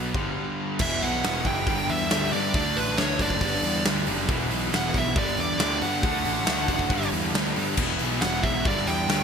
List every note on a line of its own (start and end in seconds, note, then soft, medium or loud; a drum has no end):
0.00 0.12 B1 medium
0.00 0.15 B2 medium
0.00 0.15 F#3 medium
0.00 0.15 B3 medium
0.14 0.35 G1 medium
0.14 0.80 G2 medium
0.14 0.80 D3 medium
0.14 0.80 G3 medium
0.14 kick medium
0.79 1.00 E1 medium
0.79 1.23 E2 loud
0.79 1.23 B2 loud
0.79 1.24 E3 loud
0.79 1.67 G#3 loud
0.79 1.67 B3 loud
0.79 1.04 E5 loud
0.79 kick loud
0.79 crash loud
0.83 1.68 E4 loud
1.01 1.22 B1 medium
1.01 1.46 F#5 loud
1.01 open hi-hat medium
1.23 1.44 E1 medium
1.23 1.44 E2 medium
1.23 1.45 B2 medium
1.23 1.45 E3 loud
1.23 snare loud
1.23 open hi-hat medium
1.44 1.65 F#1 medium
1.44 1.66 E2 medium
1.44 1.67 B2 medium
1.44 1.67 E3 medium
1.44 1.91 G5 loud
1.44 kick medium
1.44 open hi-hat medium
1.67 1.87 G1 loud
1.67 2.10 G2 loud
1.67 2.11 D3 loud
1.67 2.11 G3 loud
1.67 2.54 B3 loud
1.67 2.55 D4 medium
1.67 kick loud
1.67 open hi-hat medium
1.89 2.09 E2 medium
1.89 2.32 E5 loud
1.89 open hi-hat medium
2.10 2.31 D2 medium
2.10 2.31 G2 loud
2.10 2.31 D3 medium
2.10 2.32 G3 loud
2.10 snare loud
2.10 open hi-hat medium
2.33 2.54 G2 medium
2.33 2.53 G2 medium
2.33 2.53 D3 medium
2.33 2.54 G3 loud
2.33 2.78 D5 loud
2.33 open hi-hat medium
2.54 2.74 D2 loud
2.54 2.96 D3 loud
2.54 3.41 F#3 medium
2.54 2.97 A3 medium
2.54 2.98 D4 loud
2.54 kick loud
2.54 open hi-hat medium
2.76 2.96 A1 loud
2.76 2.97 B4 medium
2.76 open hi-hat medium
2.97 3.18 D2 medium
2.97 3.18 D3 medium
2.97 3.19 A3 loud
2.97 3.19 D4 loud
2.97 3.18 C#5 medium
2.97 snare loud
2.97 open hi-hat medium
3.19 3.40 F#1 medium
3.19 3.40 D3 medium
3.19 3.41 A3 medium
3.19 3.41 D4 medium
3.19 3.83 D5 medium
3.19 kick medium
3.19 open hi-hat medium
3.30 kick medium
3.41 3.61 G1 loud
3.41 3.82 G2 loud
3.41 3.82 D3 loud
3.41 3.83 G3 loud
3.41 4.29 B3 medium
3.41 4.29 D4 loud
3.41 kick loud
3.41 open hi-hat loud
3.53 snare soft
3.62 3.83 E2 medium
3.62 open hi-hat medium
3.83 4.05 D2 medium
3.83 4.05 G2 medium
3.83 4.05 D3 medium
3.83 4.06 G3 medium
3.83 snare loud
3.83 open hi-hat medium
4.06 4.27 F#1 medium
4.06 4.28 G2 loud
4.06 4.28 D3 loud
4.06 4.28 G3 medium
4.06 open hi-hat medium
4.29 4.49 E1 medium
4.29 4.71 E2 loud
4.29 4.71 B2 loud
4.29 4.72 E3 loud
4.29 5.15 G#3 loud
4.29 5.16 B3 loud
4.29 5.17 E4 loud
4.29 kick loud
4.29 open hi-hat medium
4.50 4.70 B1 loud
4.50 open hi-hat medium
4.72 4.92 E1 medium
4.72 4.93 E2 medium
4.72 4.93 B2 loud
4.72 4.94 E3 loud
4.72 snare loud
4.72 open hi-hat medium
4.76 4.97 F#5 loud
4.94 5.14 B1 medium
4.94 5.15 E2 medium
4.94 5.15 B2 medium
4.94 5.16 E3 medium
4.94 kick medium
4.94 open hi-hat medium
4.99 5.17 E5 medium
5.16 5.36 G1 loud
5.16 5.58 G2 loud
5.16 5.58 D3 loud
5.16 5.59 G3 loud
5.16 6.03 B3 medium
5.16 6.03 D4 loud
5.16 5.39 D5 medium
5.16 kick loud
5.16 open hi-hat medium
5.37 5.58 E2 medium
5.37 5.80 D5 medium
5.37 open hi-hat medium
5.59 5.79 D2 medium
5.59 5.80 G2 medium
5.59 5.80 D3 medium
5.59 5.81 G3 loud
5.59 snare loud
5.59 open hi-hat medium
5.81 6.02 G2 loud
5.81 6.01 G2 medium
5.81 6.01 D3 medium
5.81 6.03 G3 loud
5.81 7.09 F#5 loud
5.81 open hi-hat medium
6.03 6.23 D2 medium
6.03 6.45 D3 loud
6.03 6.90 F#3 medium
6.03 6.46 A3 loud
6.03 6.46 D4 loud
6.03 kick loud
6.03 open hi-hat medium
6.25 6.45 A1 loud
6.25 open hi-hat medium
6.46 6.66 D2 medium
6.46 6.67 D3 loud
6.46 6.68 A3 loud
6.46 6.68 D4 loud
6.46 snare loud
6.68 6.90 F#1 medium
6.68 6.90 D3 medium
6.68 6.90 A3 medium
6.68 6.90 D4 medium
6.68 kick medium
6.68 open hi-hat medium
6.79 kick medium
6.90 7.10 G1 loud
6.90 7.34 G2 loud
6.90 7.34 D3 loud
6.90 7.35 G3 loud
6.90 7.78 B3 loud
6.90 7.78 D4 loud
6.90 kick loud
6.90 open hi-hat medium
7.02 snare soft
7.12 7.32 E2 medium
7.12 open hi-hat medium
7.34 7.54 D2 medium
7.34 7.55 G2 medium
7.34 7.56 D3 medium
7.34 7.57 G3 medium
7.34 snare loud
7.34 open hi-hat medium
7.56 7.76 G2 medium
7.56 7.77 G2 medium
7.56 7.78 D3 medium
7.56 7.78 G3 medium
7.56 open hi-hat medium
7.77 7.97 E1 loud
7.77 8.21 E2 medium
7.77 8.22 B2 loud
7.77 8.22 E3 loud
7.77 8.64 G#3 loud
7.77 8.65 B3 loud
7.77 8.65 E4 loud
7.77 kick loud
7.77 crash loud
7.99 8.20 B1 medium
7.99 open hi-hat medium
8.21 8.42 E1 medium
8.21 8.43 E2 medium
8.21 8.43 B2 loud
8.21 8.44 E3 loud
8.21 8.44 F#5 loud
8.21 snare loud
8.21 open hi-hat medium
8.43 8.63 B1 medium
8.43 8.65 E2 medium
8.43 8.65 B2 medium
8.43 8.65 E3 medium
8.43 8.66 E5 medium
8.43 kick medium
8.43 open hi-hat medium
8.65 8.85 G1 medium
8.65 9.07 G2 loud
8.65 9.07 D3 loud
8.65 9.08 G3 loud
8.65 9.23 B3 medium
8.65 9.23 D4 medium
8.65 8.89 D5 medium
8.65 kick loud
8.65 open hi-hat medium
8.77 snare soft
8.87 9.07 E2 medium
8.87 9.23 G5 loud
8.87 open hi-hat medium
9.08 9.23 D2 medium
9.08 9.23 G2 medium
9.08 9.23 D3 medium
9.08 9.23 G3 medium
9.08 snare loud
9.08 open hi-hat medium